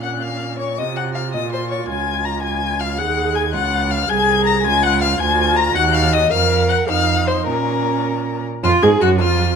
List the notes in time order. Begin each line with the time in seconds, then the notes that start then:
Already playing: A#2 C#4
0.03 F#5 F#6
0.22 F5 F6
0.59 C#5 C#6
0.78 C3 F4 D#5 D#6
0.96 F#5 F#6
1.15 F5 F6
1.33 A#2 D#5 D#6
1.52 C5 C6
1.70 C#5 C#6
1.89 C#2 G#5 G#6
2.25 A#5 A#6
2.43 G#5 G#6
2.80 F5 F6
2.98 D#2 G#4 F#5 F#6
3.35 G#5 G#6
3.54 C#2 F4 F#5 F#6
3.91 F5 F6
4.09 C2 G#4 G#5 G#6
4.45 A#5 A#6
4.64 C#2 F4 G#5 G#6
4.83 F#5 F#6
5.01 F5 F6
5.19 D2 F4 G#5 G#6
5.56 A#5 A#6
5.75 D#2 F#4 F#5 F#6
5.94 F5 F6
6.13 D#5 D#6
6.31 F2 A#4 F5 F6
6.69 F#5 F#6
6.88 F2 D#4 F5 F6
7.27 C5 C6
7.47 A#2 C#4 A#4 A#5
8.64 F2 F4 F6
8.82 G#2 G#4 G#6
9.01 F#2 F#4 F#6
9.19 F2 F4 F6